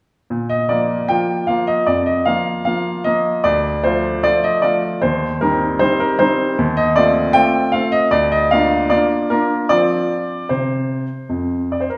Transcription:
0.30 0.68 A#2 medium
0.49 0.69 D#5 medium
0.69 1.05 F3 soft
0.69 1.05 A#3 soft
0.69 1.06 F4 soft
0.69 1.08 D5 medium
1.08 1.45 F3 soft
1.08 1.45 A#3 soft
1.08 1.45 F4 soft
1.08 1.48 G5 medium
1.47 1.83 F3 soft
1.47 1.84 A#3 soft
1.47 1.84 F4 soft
1.47 1.67 F5 medium
1.67 1.87 D#5 medium
1.86 2.26 F2 soft
1.86 2.07 D5 medium
2.06 2.26 D#5 medium
2.25 2.62 F3 soft
2.25 2.62 A#3 soft
2.25 2.63 F4 soft
2.25 2.64 F5 medium
2.65 3.02 F3 soft
2.65 3.02 A#3 soft
2.65 3.02 F4 soft
2.65 3.05 F5 medium
3.04 3.41 F3 soft
3.04 3.41 A#3 soft
3.04 3.41 F4 soft
3.04 3.44 D#5 medium
3.44 3.83 D2 medium
3.44 3.84 D5 medium
3.84 4.20 F3 soft
3.84 4.20 A3 soft
3.84 4.21 F4 soft
3.84 4.24 C5 medium
4.23 4.60 F3 soft
4.23 4.60 A3 soft
4.23 4.60 F4 soft
4.23 4.43 D5 medium
4.44 4.63 D#5 medium
4.62 4.99 F3 soft
4.62 4.99 A3 soft
4.62 4.99 F4 soft
4.62 5.02 D5 medium
5.02 5.40 D#2 soft
5.02 5.41 C5 medium
5.41 5.77 G3 soft
5.41 5.77 C4 soft
5.41 5.77 D#4 soft
5.41 5.80 A#4 medium
5.79 6.16 G3 soft
5.79 6.16 C4 soft
5.79 6.16 D#4 soft
5.79 5.99 C5 medium
6.00 6.19 A#4 medium
6.19 6.55 G3 soft
6.19 6.55 C4 soft
6.19 6.55 D#4 soft
6.19 6.58 C5 medium
6.58 6.96 D#2 medium
6.77 6.96 D#5 medium
6.96 7.31 A3 soft
6.96 7.31 C4 soft
6.96 7.32 F4 medium
6.96 7.35 D5 medium
7.33 7.69 A3 soft
7.33 7.70 C4 soft
7.33 7.70 F4 soft
7.33 7.73 G5 medium
7.72 8.09 A3 soft
7.72 8.09 C4 soft
7.72 8.09 F4 soft
7.72 7.93 F5 medium
7.92 8.12 D#5 medium
8.11 8.51 D2 medium
8.11 8.32 D5 medium
8.32 8.52 D#5 medium
8.51 8.88 A#3 soft
8.51 8.88 D4 soft
8.51 8.88 F4 soft
8.51 8.91 F5 medium
8.90 9.27 A#3 soft
8.90 9.27 D4 soft
8.90 9.27 F4 soft
8.90 9.30 D5 medium
9.30 9.67 A#3 soft
9.30 9.67 D4 soft
9.30 9.67 F4 soft
9.30 9.70 A#4 medium
9.69 10.26 F3 medium
9.69 10.34 C4 soft
9.69 10.34 F4 soft
9.69 10.49 D5 medium
10.49 11.06 C3 soft
10.49 11.72 C5 soft
11.29 11.85 F2 soft
11.72 11.81 D5 soft
11.80 11.90 C5 soft
11.90 11.98 A#4 soft

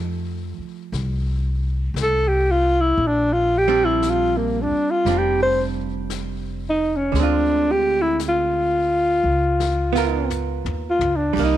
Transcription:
0.00 0.54 F2 medium
0.00 2.99 F3 soft
0.00 3.01 A3 medium
0.00 3.01 D#4 medium
0.00 3.02 G4 medium
0.58 muted upright bass stroke soft
0.92 1.92 C2 medium
0.92 brush sweep soft
0.92 snare soft
1.94 2.94 C2 medium
1.94 brush sweep soft
1.94 snare soft
1.94 hi-hat pedal soft
2.02 2.30 A4 medium
2.28 2.52 G4 medium
2.51 2.82 F4 medium
2.81 3.08 E4 medium
2.98 4.67 A#1 medium
2.98 brush sweep soft
3.07 3.34 D4 medium
3.33 3.59 F4 medium
3.58 3.86 G4 medium
3.68 5.05 G3 medium
3.68 5.07 C4 medium
3.68 5.08 D4 medium
3.85 4.11 E4 medium
4.02 brush sweep soft
4.02 snare soft
4.02 hi-hat pedal medium
4.10 4.38 F4 medium
4.37 4.63 A#3 medium
4.62 4.92 D4 medium
4.71 muted upright bass stroke soft
4.91 5.19 F4 medium
5.05 7.10 F1 medium
5.05 7.14 G3 soft
5.05 7.15 C4 soft
5.05 brush sweep soft
5.05 snare soft
5.09 7.16 D4 soft
5.18 5.42 G4 medium
5.42 5.63 C5 medium
6.10 brush sweep soft
6.10 snare soft
6.10 hi-hat pedal soft
6.69 6.98 D#4 medium
6.96 7.21 C#4 medium
7.12 9.20 D2 medium
7.12 9.23 D3 soft
7.12 9.25 G#3 soft
7.12 brush sweep soft
7.12 snare soft
7.20 9.27 C4 soft
7.20 7.73 D4 medium
7.20 9.28 F4 soft
7.71 8.03 G4 medium
8.02 8.19 E4 medium
8.20 brush sweep soft
8.20 snare soft
8.20 hi-hat pedal medium
8.28 10.30 F4 medium
9.23 10.61 C#2 medium
9.60 snare soft
9.93 11.35 B3 soft
9.93 11.36 F4 soft
9.93 snare medium
9.98 11.37 A#4 medium
10.30 floor tom medium
10.30 hi-hat pedal medium
10.64 10.97 D#2 medium
10.64 floor tom medium
10.90 11.17 F4 medium
10.99 11.32 C#2 medium
10.99 floor tom medium
11.16 11.45 D4 medium
11.33 11.57 C2 medium
11.33 11.57 G3 soft
11.33 brush sweep soft
11.33 kick medium
11.33 snare soft
11.33 crash medium
11.39 11.57 A#3 soft
11.44 11.57 D#4 medium

